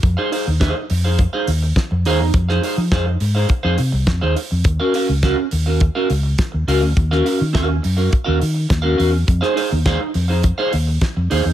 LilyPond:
<<
  \new Staff \with { instrumentName = "Clean electric guitar" } { \time 4/4 \key f \phrygian \tempo 4 = 104 r16 <ees' aes' c'' f''>16 <ees' aes' c'' f''>16 r16 <ees' aes' c'' f''>16 r8 <ees' aes' c'' f''>16 r16 <ees' aes' c'' f''>16 r4 <ees' aes' c'' f''>16 r16 | r16 <ees' aes' c'' f''>16 <ees' aes' c'' f''>16 r16 <ees' aes' c'' f''>16 r8 <ees' aes' c'' f''>16 r16 <ees' aes' c'' f''>16 r8. <ees' aes' c'' f''>16 r8 | r16 <des' ges' bes' f''>16 <des' ges' bes' f''>16 r16 <des' ges' bes' f''>16 r8 <des' ges' bes' f''>16 r16 <des' ges' bes' f''>16 r4 <des' ges' bes' f''>16 r16 | r16 <des' ges' bes' f''>16 <des' ges' bes' f''>16 r16 <des' ges' bes' f''>16 r8 <des' ges' bes' f''>16 r16 <des' ges' bes' f''>16 r8. <des' ges' bes' f''>16 <des' ges' bes' f''>16 r16 |
r16 <ees' aes' c'' f''>16 <ees' aes' c'' f''>16 r16 <ees' aes' c'' f''>16 r8 <ees' aes' c'' f''>16 r16 <ees' aes' c'' f''>16 r4 <ees' aes' c'' f''>16 r16 | }
  \new Staff \with { instrumentName = "Fingered electric bass" } { \clef bass \time 4/4 \key f \phrygian f,16 r8 ees,8 r16 f,8. r16 ees,8 r16 f,16 ees,16 fes,16 | f,8 r16 f16 f,8 aes,8 r16 f,16 c16 c,16 f,16 ees,16 r16 f,16 | ees,16 r8 des,8 r16 ees,8. r16 des,8 r16 ees,16 des,16 d,16 | ees,8 r16 ees16 ees,8 ges,8 r16 ees,16 ees8 ees,8 fes,8 |
f,16 r8 ees,8 r16 f,8. r16 ees,8 r16 f,16 ees,16 fes,16 | }
  \new DrumStaff \with { instrumentName = "Drums" } \drummode { \time 4/4 <hh bd>8 hho8 <hh bd sn>8 hho8 <hh bd>8 hho8 <hh bd sn>8 hho8 | <hh bd>16 sn16 hho8 <hh bd sn>8 hho8 <hh bd>8 hho8 <hh bd sn>8 hho8 | <hh bd>8 hho8 <hh bd sn>8 hho8 <hh bd>8 hho8 <hh bd sn>8 hho8 | <hh bd>16 sn16 hho8 <hh bd sn>8 hho8 <hh bd>8 hho8 <hh bd sn>8 hho8 |
<hh bd>16 sn16 hho8 <hh bd sn>8 hho8 <hh bd>8 hho8 <hh bd sn>8 hho8 | }
>>